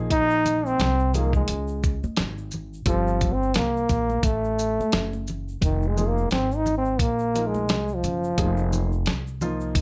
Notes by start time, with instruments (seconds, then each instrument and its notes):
Already playing: upright bass A#1, upright piano F3 A#3 D#4 G#4
0.10 trombone D#4, kick, closed hi-hat, shaker
0.30 shaker
0.46 closed hi-hat, high conga, low conga, shaker
0.66 trombone C4, shaker
0.79 upright bass C2, snare, closed hi-hat, shaker
0.99 shaker
1.14 upright piano F3 A#3 D#4 G#4, trombone A#3, closed hi-hat, low conga, shaker
1.33 trombone G#3, kick, shaker
1.48 upright bass C#2, closed hi-hat, shaker
1.68 shaker
1.84 kick, shaker
2.04 muted upright bass stroke, high conga, shaker
2.17 upright bass G#1, snare, closed hi-hat, shaker
2.38 shaker
2.51 low conga, shaker
2.54 shaker
2.74 shaker
2.86 upright bass G1, trombone F3, upright piano G3 C4 F4 A4, kick, closed hi-hat, shaker
3.08 shaker
3.21 kick, closed hi-hat, high conga, low conga, shaker
3.23 shaker
3.33 trombone C4
3.43 shaker
3.54 upright bass C2, trombone A#3, snare, closed hi-hat, shaker
3.77 shaker
3.89 upright bass A#1, kick, closed hi-hat, low conga, shaker
3.91 shaker
4.10 high conga, shaker
4.23 upright bass A1, trombone A3, kick, closed hi-hat, shaker
4.44 shaker
4.59 shaker
4.61 shaker
4.79 muted upright bass stroke, high conga, shaker
4.92 upright bass F#1, snare, closed hi-hat, shaker
5.13 high conga, shaker
5.27 high conga, low conga, shaker
5.30 shaker
5.49 shaker
5.61 upright bass F1, trombone D#3, kick, closed hi-hat, shaker
5.82 shaker
5.87 trombone G#3
5.97 upright piano F3 A#3 D#4 G#4, low conga, shaker
6.08 trombone A#3
6.18 shaker
6.31 upright bass G#1, trombone C4, snare, closed hi-hat, shaker
6.51 shaker
6.56 trombone D#4
6.66 low conga, shaker
6.78 trombone C4
6.85 shaker
6.99 upright bass A#1, trombone A#3, kick, closed hi-hat, shaker
7.19 shaker
7.35 upright piano F3 A#3 D#4 A#4, closed hi-hat, shaker
7.47 trombone G#3
7.54 high conga, shaker
7.68 upright bass C2, snare, closed hi-hat, shaker
7.88 shaker
7.94 trombone F3
8.04 upright bass F#1, closed hi-hat, low conga, shaker
8.24 shaker
8.38 upright bass F1, upright piano F3 A#3 D#4 G#4, kick, closed hi-hat, shaker
8.57 shaker
8.73 low conga, shaker
8.93 shaker
9.06 upright bass C2, snare, closed hi-hat, shaker
9.27 shaker
9.41 upright piano F3 A#3 D#4 F4, low conga, shaker
9.61 shaker
9.75 upright bass G#1, kick, closed hi-hat, shaker